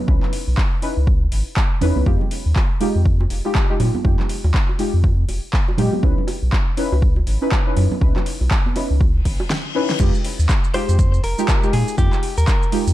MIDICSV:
0, 0, Header, 1, 6, 480
1, 0, Start_track
1, 0, Tempo, 495868
1, 77, Time_signature, 4, 2, 24, 8
1, 12521, End_track
2, 0, Start_track
2, 0, Title_t, "Clean electric guitar"
2, 0, Program_c, 0, 27
2, 10400, Note_on_c, 0, 72, 115
2, 10875, Note_off_c, 0, 72, 0
2, 10879, Note_on_c, 0, 70, 109
2, 11355, Note_off_c, 0, 70, 0
2, 11358, Note_on_c, 0, 68, 93
2, 11593, Note_off_c, 0, 68, 0
2, 11597, Note_on_c, 0, 67, 100
2, 11977, Note_off_c, 0, 67, 0
2, 11981, Note_on_c, 0, 70, 85
2, 12427, Note_off_c, 0, 70, 0
2, 12521, End_track
3, 0, Start_track
3, 0, Title_t, "Synth stab"
3, 0, Program_c, 1, 62
3, 69, Note_on_c, 1, 61, 74
3, 74, Note_on_c, 1, 63, 69
3, 81, Note_on_c, 1, 64, 67
3, 86, Note_on_c, 1, 71, 82
3, 770, Note_off_c, 1, 61, 0
3, 773, Note_off_c, 1, 63, 0
3, 776, Note_off_c, 1, 64, 0
3, 779, Note_off_c, 1, 71, 0
3, 793, Note_on_c, 1, 61, 81
3, 796, Note_on_c, 1, 63, 76
3, 799, Note_on_c, 1, 64, 69
3, 803, Note_on_c, 1, 71, 89
3, 932, Note_off_c, 1, 61, 0
3, 934, Note_off_c, 1, 63, 0
3, 935, Note_off_c, 1, 64, 0
3, 937, Note_off_c, 1, 71, 0
3, 1753, Note_on_c, 1, 61, 93
3, 1755, Note_on_c, 1, 63, 87
3, 1759, Note_on_c, 1, 64, 86
3, 1762, Note_on_c, 1, 71, 102
3, 1972, Note_off_c, 1, 61, 0
3, 1973, Note_off_c, 1, 63, 0
3, 1975, Note_off_c, 1, 64, 0
3, 1976, Note_off_c, 1, 71, 0
3, 1992, Note_on_c, 1, 56, 93
3, 1995, Note_on_c, 1, 63, 82
3, 1998, Note_on_c, 1, 65, 86
3, 2001, Note_on_c, 1, 67, 99
3, 2132, Note_off_c, 1, 56, 0
3, 2133, Note_off_c, 1, 63, 0
3, 2135, Note_off_c, 1, 65, 0
3, 2136, Note_off_c, 1, 67, 0
3, 2712, Note_on_c, 1, 56, 91
3, 2715, Note_on_c, 1, 63, 84
3, 2718, Note_on_c, 1, 65, 85
3, 2721, Note_on_c, 1, 67, 99
3, 2909, Note_off_c, 1, 56, 0
3, 2911, Note_off_c, 1, 63, 0
3, 2913, Note_off_c, 1, 65, 0
3, 2914, Note_off_c, 1, 67, 0
3, 3335, Note_on_c, 1, 56, 88
3, 3338, Note_on_c, 1, 63, 84
3, 3341, Note_on_c, 1, 65, 83
3, 3344, Note_on_c, 1, 67, 100
3, 3544, Note_off_c, 1, 56, 0
3, 3545, Note_off_c, 1, 63, 0
3, 3546, Note_off_c, 1, 65, 0
3, 3548, Note_off_c, 1, 67, 0
3, 3575, Note_on_c, 1, 56, 85
3, 3578, Note_on_c, 1, 63, 80
3, 3582, Note_on_c, 1, 65, 82
3, 3585, Note_on_c, 1, 67, 96
3, 3892, Note_off_c, 1, 56, 0
3, 3893, Note_off_c, 1, 63, 0
3, 3895, Note_off_c, 1, 65, 0
3, 3896, Note_off_c, 1, 67, 0
3, 3908, Note_on_c, 1, 56, 75
3, 3914, Note_on_c, 1, 63, 68
3, 3920, Note_on_c, 1, 65, 71
3, 3926, Note_on_c, 1, 67, 83
3, 4610, Note_off_c, 1, 56, 0
3, 4612, Note_off_c, 1, 63, 0
3, 4615, Note_off_c, 1, 65, 0
3, 4618, Note_off_c, 1, 67, 0
3, 4633, Note_on_c, 1, 56, 80
3, 4636, Note_on_c, 1, 63, 70
3, 4639, Note_on_c, 1, 65, 70
3, 4642, Note_on_c, 1, 67, 86
3, 4772, Note_off_c, 1, 56, 0
3, 4773, Note_off_c, 1, 63, 0
3, 4775, Note_off_c, 1, 65, 0
3, 4776, Note_off_c, 1, 67, 0
3, 5592, Note_on_c, 1, 56, 95
3, 5595, Note_on_c, 1, 63, 88
3, 5598, Note_on_c, 1, 65, 86
3, 5601, Note_on_c, 1, 67, 107
3, 5812, Note_off_c, 1, 56, 0
3, 5813, Note_off_c, 1, 63, 0
3, 5815, Note_off_c, 1, 65, 0
3, 5816, Note_off_c, 1, 67, 0
3, 5832, Note_on_c, 1, 61, 90
3, 5835, Note_on_c, 1, 63, 83
3, 5838, Note_on_c, 1, 64, 82
3, 5841, Note_on_c, 1, 71, 98
3, 5971, Note_off_c, 1, 61, 0
3, 5973, Note_off_c, 1, 63, 0
3, 5974, Note_off_c, 1, 64, 0
3, 5976, Note_off_c, 1, 71, 0
3, 6554, Note_on_c, 1, 61, 92
3, 6556, Note_on_c, 1, 63, 82
3, 6560, Note_on_c, 1, 64, 86
3, 6563, Note_on_c, 1, 71, 102
3, 6750, Note_off_c, 1, 61, 0
3, 6752, Note_off_c, 1, 63, 0
3, 6753, Note_off_c, 1, 64, 0
3, 6755, Note_off_c, 1, 71, 0
3, 7176, Note_on_c, 1, 61, 89
3, 7178, Note_on_c, 1, 63, 80
3, 7181, Note_on_c, 1, 64, 82
3, 7185, Note_on_c, 1, 71, 98
3, 7384, Note_off_c, 1, 61, 0
3, 7385, Note_off_c, 1, 63, 0
3, 7387, Note_off_c, 1, 64, 0
3, 7388, Note_off_c, 1, 71, 0
3, 7416, Note_on_c, 1, 61, 85
3, 7419, Note_on_c, 1, 63, 79
3, 7422, Note_on_c, 1, 64, 80
3, 7425, Note_on_c, 1, 71, 100
3, 7732, Note_off_c, 1, 61, 0
3, 7734, Note_off_c, 1, 63, 0
3, 7735, Note_off_c, 1, 64, 0
3, 7737, Note_off_c, 1, 71, 0
3, 7750, Note_on_c, 1, 61, 74
3, 7756, Note_on_c, 1, 63, 70
3, 7762, Note_on_c, 1, 64, 69
3, 7768, Note_on_c, 1, 71, 82
3, 8451, Note_off_c, 1, 61, 0
3, 8454, Note_off_c, 1, 63, 0
3, 8457, Note_off_c, 1, 64, 0
3, 8460, Note_off_c, 1, 71, 0
3, 8473, Note_on_c, 1, 61, 79
3, 8476, Note_on_c, 1, 63, 71
3, 8479, Note_on_c, 1, 64, 70
3, 8482, Note_on_c, 1, 71, 87
3, 8612, Note_off_c, 1, 61, 0
3, 8614, Note_off_c, 1, 63, 0
3, 8615, Note_off_c, 1, 64, 0
3, 8617, Note_off_c, 1, 71, 0
3, 9434, Note_on_c, 1, 61, 97
3, 9436, Note_on_c, 1, 63, 87
3, 9440, Note_on_c, 1, 64, 89
3, 9442, Note_on_c, 1, 71, 105
3, 9652, Note_off_c, 1, 61, 0
3, 9654, Note_off_c, 1, 63, 0
3, 9655, Note_off_c, 1, 64, 0
3, 9657, Note_off_c, 1, 71, 0
3, 9674, Note_on_c, 1, 56, 95
3, 9677, Note_on_c, 1, 63, 87
3, 9680, Note_on_c, 1, 65, 86
3, 9683, Note_on_c, 1, 67, 104
3, 9813, Note_off_c, 1, 56, 0
3, 9814, Note_off_c, 1, 63, 0
3, 9816, Note_off_c, 1, 65, 0
3, 9817, Note_off_c, 1, 67, 0
3, 10393, Note_on_c, 1, 56, 90
3, 10397, Note_on_c, 1, 63, 82
3, 10400, Note_on_c, 1, 65, 85
3, 10403, Note_on_c, 1, 67, 107
3, 10590, Note_off_c, 1, 56, 0
3, 10592, Note_off_c, 1, 63, 0
3, 10593, Note_off_c, 1, 65, 0
3, 10595, Note_off_c, 1, 67, 0
3, 11016, Note_on_c, 1, 56, 92
3, 11020, Note_on_c, 1, 63, 82
3, 11022, Note_on_c, 1, 65, 82
3, 11025, Note_on_c, 1, 67, 100
3, 11224, Note_off_c, 1, 56, 0
3, 11226, Note_off_c, 1, 63, 0
3, 11227, Note_off_c, 1, 65, 0
3, 11229, Note_off_c, 1, 67, 0
3, 11256, Note_on_c, 1, 56, 89
3, 11259, Note_on_c, 1, 63, 79
3, 11262, Note_on_c, 1, 65, 78
3, 11265, Note_on_c, 1, 67, 97
3, 11572, Note_off_c, 1, 56, 0
3, 11574, Note_off_c, 1, 63, 0
3, 11575, Note_off_c, 1, 65, 0
3, 11577, Note_off_c, 1, 67, 0
3, 11588, Note_on_c, 1, 56, 76
3, 11594, Note_on_c, 1, 63, 71
3, 11600, Note_on_c, 1, 65, 73
3, 11606, Note_on_c, 1, 67, 81
3, 12289, Note_off_c, 1, 56, 0
3, 12293, Note_off_c, 1, 63, 0
3, 12296, Note_off_c, 1, 65, 0
3, 12299, Note_off_c, 1, 67, 0
3, 12313, Note_on_c, 1, 56, 83
3, 12316, Note_on_c, 1, 63, 72
3, 12319, Note_on_c, 1, 65, 74
3, 12322, Note_on_c, 1, 67, 87
3, 12452, Note_off_c, 1, 56, 0
3, 12453, Note_off_c, 1, 63, 0
3, 12455, Note_off_c, 1, 65, 0
3, 12456, Note_off_c, 1, 67, 0
3, 12521, End_track
4, 0, Start_track
4, 0, Title_t, "Analog synth bass"
4, 0, Program_c, 2, 38
4, 78, Note_on_c, 2, 37, 102
4, 182, Note_off_c, 2, 37, 0
4, 461, Note_on_c, 2, 35, 96
4, 532, Note_off_c, 2, 35, 0
4, 940, Note_on_c, 2, 37, 90
4, 1236, Note_off_c, 2, 37, 0
4, 1278, Note_on_c, 2, 32, 91
4, 1382, Note_off_c, 2, 32, 0
4, 1757, Note_on_c, 2, 40, 100
4, 1862, Note_off_c, 2, 40, 0
4, 1900, Note_on_c, 2, 37, 85
4, 1972, Note_off_c, 2, 37, 0
4, 1998, Note_on_c, 2, 41, 104
4, 2102, Note_off_c, 2, 41, 0
4, 2381, Note_on_c, 2, 39, 95
4, 2452, Note_off_c, 2, 39, 0
4, 2861, Note_on_c, 2, 41, 85
4, 3156, Note_off_c, 2, 41, 0
4, 3198, Note_on_c, 2, 29, 93
4, 3302, Note_off_c, 2, 29, 0
4, 3678, Note_on_c, 2, 46, 93
4, 3782, Note_off_c, 2, 46, 0
4, 3918, Note_on_c, 2, 41, 103
4, 4022, Note_off_c, 2, 41, 0
4, 4301, Note_on_c, 2, 39, 99
4, 4372, Note_off_c, 2, 39, 0
4, 4780, Note_on_c, 2, 41, 89
4, 5076, Note_off_c, 2, 41, 0
4, 5117, Note_on_c, 2, 29, 91
4, 5222, Note_off_c, 2, 29, 0
4, 5597, Note_on_c, 2, 46, 99
4, 5702, Note_off_c, 2, 46, 0
4, 5838, Note_on_c, 2, 37, 106
4, 5942, Note_off_c, 2, 37, 0
4, 6220, Note_on_c, 2, 35, 92
4, 6291, Note_off_c, 2, 35, 0
4, 6700, Note_on_c, 2, 37, 88
4, 6996, Note_off_c, 2, 37, 0
4, 7037, Note_on_c, 2, 32, 93
4, 7142, Note_off_c, 2, 32, 0
4, 7518, Note_on_c, 2, 42, 95
4, 7622, Note_off_c, 2, 42, 0
4, 7758, Note_on_c, 2, 37, 100
4, 7862, Note_off_c, 2, 37, 0
4, 8140, Note_on_c, 2, 35, 96
4, 8212, Note_off_c, 2, 35, 0
4, 8621, Note_on_c, 2, 37, 85
4, 8916, Note_off_c, 2, 37, 0
4, 8958, Note_on_c, 2, 32, 95
4, 9062, Note_off_c, 2, 32, 0
4, 9678, Note_on_c, 2, 41, 104
4, 9782, Note_off_c, 2, 41, 0
4, 10060, Note_on_c, 2, 39, 95
4, 10131, Note_off_c, 2, 39, 0
4, 10541, Note_on_c, 2, 41, 87
4, 10836, Note_off_c, 2, 41, 0
4, 10878, Note_on_c, 2, 29, 91
4, 10983, Note_off_c, 2, 29, 0
4, 11358, Note_on_c, 2, 46, 94
4, 11462, Note_off_c, 2, 46, 0
4, 11598, Note_on_c, 2, 41, 105
4, 11702, Note_off_c, 2, 41, 0
4, 11981, Note_on_c, 2, 39, 98
4, 12052, Note_off_c, 2, 39, 0
4, 12461, Note_on_c, 2, 41, 92
4, 12521, Note_off_c, 2, 41, 0
4, 12521, End_track
5, 0, Start_track
5, 0, Title_t, "Reverse cymbal"
5, 0, Program_c, 3, 119
5, 8718, Note_on_c, 3, 60, 77
5, 9678, Note_off_c, 3, 60, 0
5, 12521, End_track
6, 0, Start_track
6, 0, Title_t, "Drums"
6, 78, Note_on_c, 9, 36, 125
6, 175, Note_off_c, 9, 36, 0
6, 220, Note_on_c, 9, 39, 35
6, 227, Note_on_c, 9, 64, 70
6, 317, Note_off_c, 9, 39, 0
6, 317, Note_on_c, 9, 46, 111
6, 324, Note_off_c, 9, 64, 0
6, 414, Note_off_c, 9, 46, 0
6, 557, Note_on_c, 9, 39, 112
6, 558, Note_on_c, 9, 36, 121
6, 654, Note_off_c, 9, 39, 0
6, 655, Note_off_c, 9, 36, 0
6, 797, Note_on_c, 9, 46, 107
6, 894, Note_off_c, 9, 46, 0
6, 1038, Note_on_c, 9, 36, 117
6, 1135, Note_off_c, 9, 36, 0
6, 1277, Note_on_c, 9, 46, 108
6, 1374, Note_off_c, 9, 46, 0
6, 1517, Note_on_c, 9, 39, 118
6, 1518, Note_on_c, 9, 36, 124
6, 1614, Note_off_c, 9, 39, 0
6, 1615, Note_off_c, 9, 36, 0
6, 1753, Note_on_c, 9, 64, 97
6, 1757, Note_on_c, 9, 46, 108
6, 1850, Note_off_c, 9, 64, 0
6, 1854, Note_off_c, 9, 46, 0
6, 1900, Note_on_c, 9, 63, 87
6, 1900, Note_on_c, 9, 64, 88
6, 1996, Note_off_c, 9, 63, 0
6, 1997, Note_off_c, 9, 64, 0
6, 1998, Note_on_c, 9, 36, 117
6, 2094, Note_off_c, 9, 36, 0
6, 2139, Note_on_c, 9, 60, 45
6, 2142, Note_on_c, 9, 64, 78
6, 2236, Note_off_c, 9, 60, 0
6, 2237, Note_on_c, 9, 46, 104
6, 2239, Note_off_c, 9, 64, 0
6, 2334, Note_off_c, 9, 46, 0
6, 2477, Note_on_c, 9, 39, 108
6, 2478, Note_on_c, 9, 36, 121
6, 2481, Note_on_c, 9, 60, 77
6, 2574, Note_off_c, 9, 36, 0
6, 2574, Note_off_c, 9, 39, 0
6, 2578, Note_off_c, 9, 60, 0
6, 2716, Note_on_c, 9, 46, 106
6, 2719, Note_on_c, 9, 60, 50
6, 2813, Note_off_c, 9, 46, 0
6, 2816, Note_off_c, 9, 60, 0
6, 2958, Note_on_c, 9, 36, 110
6, 3054, Note_off_c, 9, 36, 0
6, 3102, Note_on_c, 9, 60, 79
6, 3197, Note_on_c, 9, 46, 105
6, 3199, Note_off_c, 9, 60, 0
6, 3294, Note_off_c, 9, 46, 0
6, 3339, Note_on_c, 9, 60, 50
6, 3436, Note_off_c, 9, 60, 0
6, 3438, Note_on_c, 9, 36, 119
6, 3438, Note_on_c, 9, 39, 112
6, 3534, Note_off_c, 9, 36, 0
6, 3535, Note_off_c, 9, 39, 0
6, 3677, Note_on_c, 9, 46, 104
6, 3679, Note_on_c, 9, 64, 90
6, 3684, Note_on_c, 9, 60, 80
6, 3774, Note_off_c, 9, 46, 0
6, 3775, Note_off_c, 9, 64, 0
6, 3781, Note_off_c, 9, 60, 0
6, 3820, Note_on_c, 9, 63, 79
6, 3822, Note_on_c, 9, 64, 85
6, 3916, Note_off_c, 9, 63, 0
6, 3917, Note_on_c, 9, 60, 48
6, 3918, Note_off_c, 9, 64, 0
6, 3918, Note_on_c, 9, 36, 118
6, 4014, Note_off_c, 9, 36, 0
6, 4014, Note_off_c, 9, 60, 0
6, 4060, Note_on_c, 9, 39, 33
6, 4063, Note_on_c, 9, 64, 72
6, 4157, Note_off_c, 9, 39, 0
6, 4157, Note_on_c, 9, 46, 99
6, 4160, Note_off_c, 9, 64, 0
6, 4254, Note_off_c, 9, 46, 0
6, 4301, Note_on_c, 9, 60, 76
6, 4397, Note_off_c, 9, 60, 0
6, 4397, Note_on_c, 9, 36, 110
6, 4397, Note_on_c, 9, 39, 111
6, 4494, Note_off_c, 9, 36, 0
6, 4494, Note_off_c, 9, 39, 0
6, 4542, Note_on_c, 9, 60, 45
6, 4637, Note_on_c, 9, 46, 102
6, 4639, Note_off_c, 9, 60, 0
6, 4734, Note_off_c, 9, 46, 0
6, 4877, Note_on_c, 9, 36, 107
6, 4879, Note_on_c, 9, 60, 77
6, 4974, Note_off_c, 9, 36, 0
6, 4976, Note_off_c, 9, 60, 0
6, 5117, Note_on_c, 9, 46, 102
6, 5117, Note_on_c, 9, 60, 46
6, 5213, Note_off_c, 9, 46, 0
6, 5214, Note_off_c, 9, 60, 0
6, 5356, Note_on_c, 9, 39, 115
6, 5357, Note_on_c, 9, 36, 114
6, 5453, Note_off_c, 9, 39, 0
6, 5454, Note_off_c, 9, 36, 0
6, 5503, Note_on_c, 9, 60, 74
6, 5591, Note_on_c, 9, 64, 94
6, 5597, Note_on_c, 9, 46, 103
6, 5600, Note_off_c, 9, 60, 0
6, 5688, Note_off_c, 9, 64, 0
6, 5694, Note_off_c, 9, 46, 0
6, 5732, Note_on_c, 9, 60, 53
6, 5738, Note_on_c, 9, 64, 83
6, 5742, Note_on_c, 9, 63, 75
6, 5829, Note_off_c, 9, 60, 0
6, 5834, Note_off_c, 9, 64, 0
6, 5838, Note_on_c, 9, 36, 110
6, 5839, Note_off_c, 9, 63, 0
6, 5934, Note_off_c, 9, 36, 0
6, 5983, Note_on_c, 9, 64, 78
6, 6073, Note_on_c, 9, 60, 84
6, 6077, Note_on_c, 9, 46, 101
6, 6080, Note_off_c, 9, 64, 0
6, 6170, Note_off_c, 9, 60, 0
6, 6174, Note_off_c, 9, 46, 0
6, 6317, Note_on_c, 9, 39, 113
6, 6318, Note_on_c, 9, 36, 113
6, 6323, Note_on_c, 9, 60, 53
6, 6414, Note_off_c, 9, 39, 0
6, 6415, Note_off_c, 9, 36, 0
6, 6420, Note_off_c, 9, 60, 0
6, 6557, Note_on_c, 9, 46, 102
6, 6653, Note_off_c, 9, 46, 0
6, 6701, Note_on_c, 9, 60, 78
6, 6798, Note_off_c, 9, 60, 0
6, 6798, Note_on_c, 9, 36, 106
6, 6895, Note_off_c, 9, 36, 0
6, 6933, Note_on_c, 9, 60, 57
6, 7030, Note_off_c, 9, 60, 0
6, 7037, Note_on_c, 9, 46, 101
6, 7133, Note_off_c, 9, 46, 0
6, 7277, Note_on_c, 9, 39, 117
6, 7277, Note_on_c, 9, 60, 76
6, 7278, Note_on_c, 9, 36, 115
6, 7374, Note_off_c, 9, 39, 0
6, 7374, Note_off_c, 9, 60, 0
6, 7375, Note_off_c, 9, 36, 0
6, 7516, Note_on_c, 9, 64, 93
6, 7517, Note_on_c, 9, 46, 103
6, 7520, Note_on_c, 9, 60, 50
6, 7613, Note_off_c, 9, 64, 0
6, 7614, Note_off_c, 9, 46, 0
6, 7617, Note_off_c, 9, 60, 0
6, 7661, Note_on_c, 9, 64, 97
6, 7663, Note_on_c, 9, 63, 73
6, 7758, Note_off_c, 9, 64, 0
6, 7758, Note_on_c, 9, 36, 113
6, 7759, Note_off_c, 9, 63, 0
6, 7855, Note_off_c, 9, 36, 0
6, 7899, Note_on_c, 9, 60, 84
6, 7901, Note_on_c, 9, 39, 37
6, 7904, Note_on_c, 9, 64, 78
6, 7996, Note_off_c, 9, 60, 0
6, 7997, Note_on_c, 9, 46, 102
6, 7998, Note_off_c, 9, 39, 0
6, 8001, Note_off_c, 9, 64, 0
6, 8094, Note_off_c, 9, 46, 0
6, 8142, Note_on_c, 9, 60, 48
6, 8237, Note_on_c, 9, 39, 116
6, 8238, Note_on_c, 9, 36, 119
6, 8239, Note_off_c, 9, 60, 0
6, 8334, Note_off_c, 9, 39, 0
6, 8335, Note_off_c, 9, 36, 0
6, 8382, Note_on_c, 9, 63, 70
6, 8477, Note_on_c, 9, 46, 104
6, 8479, Note_off_c, 9, 63, 0
6, 8479, Note_on_c, 9, 60, 81
6, 8574, Note_off_c, 9, 46, 0
6, 8575, Note_off_c, 9, 60, 0
6, 8718, Note_on_c, 9, 36, 114
6, 8725, Note_on_c, 9, 60, 61
6, 8815, Note_off_c, 9, 36, 0
6, 8822, Note_off_c, 9, 60, 0
6, 8957, Note_on_c, 9, 46, 104
6, 8958, Note_on_c, 9, 36, 61
6, 9054, Note_off_c, 9, 46, 0
6, 9055, Note_off_c, 9, 36, 0
6, 9098, Note_on_c, 9, 60, 89
6, 9195, Note_off_c, 9, 60, 0
6, 9197, Note_on_c, 9, 38, 114
6, 9294, Note_off_c, 9, 38, 0
6, 9580, Note_on_c, 9, 38, 77
6, 9677, Note_off_c, 9, 38, 0
6, 9677, Note_on_c, 9, 49, 105
6, 9678, Note_on_c, 9, 36, 116
6, 9678, Note_on_c, 9, 82, 60
6, 9774, Note_off_c, 9, 49, 0
6, 9774, Note_off_c, 9, 82, 0
6, 9775, Note_off_c, 9, 36, 0
6, 9821, Note_on_c, 9, 82, 34
6, 9917, Note_on_c, 9, 46, 111
6, 9918, Note_off_c, 9, 82, 0
6, 10014, Note_off_c, 9, 46, 0
6, 10061, Note_on_c, 9, 82, 70
6, 10157, Note_off_c, 9, 82, 0
6, 10157, Note_on_c, 9, 39, 120
6, 10157, Note_on_c, 9, 82, 58
6, 10158, Note_on_c, 9, 36, 122
6, 10254, Note_off_c, 9, 39, 0
6, 10254, Note_off_c, 9, 82, 0
6, 10255, Note_off_c, 9, 36, 0
6, 10300, Note_on_c, 9, 82, 37
6, 10396, Note_on_c, 9, 46, 113
6, 10397, Note_off_c, 9, 82, 0
6, 10493, Note_off_c, 9, 46, 0
6, 10540, Note_on_c, 9, 82, 73
6, 10636, Note_off_c, 9, 82, 0
6, 10637, Note_on_c, 9, 82, 59
6, 10638, Note_on_c, 9, 36, 121
6, 10734, Note_off_c, 9, 82, 0
6, 10735, Note_off_c, 9, 36, 0
6, 10780, Note_on_c, 9, 82, 35
6, 10877, Note_off_c, 9, 82, 0
6, 10877, Note_on_c, 9, 46, 103
6, 10974, Note_off_c, 9, 46, 0
6, 11020, Note_on_c, 9, 82, 69
6, 11117, Note_off_c, 9, 82, 0
6, 11117, Note_on_c, 9, 39, 127
6, 11117, Note_on_c, 9, 82, 59
6, 11118, Note_on_c, 9, 36, 123
6, 11214, Note_off_c, 9, 39, 0
6, 11214, Note_off_c, 9, 82, 0
6, 11215, Note_off_c, 9, 36, 0
6, 11260, Note_on_c, 9, 82, 34
6, 11357, Note_off_c, 9, 82, 0
6, 11357, Note_on_c, 9, 46, 103
6, 11453, Note_off_c, 9, 46, 0
6, 11500, Note_on_c, 9, 82, 72
6, 11597, Note_off_c, 9, 82, 0
6, 11597, Note_on_c, 9, 82, 60
6, 11598, Note_on_c, 9, 36, 120
6, 11694, Note_off_c, 9, 82, 0
6, 11695, Note_off_c, 9, 36, 0
6, 11739, Note_on_c, 9, 39, 39
6, 11739, Note_on_c, 9, 82, 33
6, 11836, Note_off_c, 9, 39, 0
6, 11836, Note_off_c, 9, 82, 0
6, 11837, Note_on_c, 9, 46, 112
6, 11933, Note_off_c, 9, 46, 0
6, 11980, Note_on_c, 9, 82, 70
6, 12077, Note_off_c, 9, 82, 0
6, 12077, Note_on_c, 9, 39, 122
6, 12077, Note_on_c, 9, 82, 56
6, 12078, Note_on_c, 9, 36, 127
6, 12174, Note_off_c, 9, 39, 0
6, 12174, Note_off_c, 9, 82, 0
6, 12175, Note_off_c, 9, 36, 0
6, 12220, Note_on_c, 9, 82, 37
6, 12316, Note_on_c, 9, 46, 113
6, 12317, Note_off_c, 9, 82, 0
6, 12413, Note_off_c, 9, 46, 0
6, 12460, Note_on_c, 9, 82, 72
6, 12521, Note_off_c, 9, 82, 0
6, 12521, End_track
0, 0, End_of_file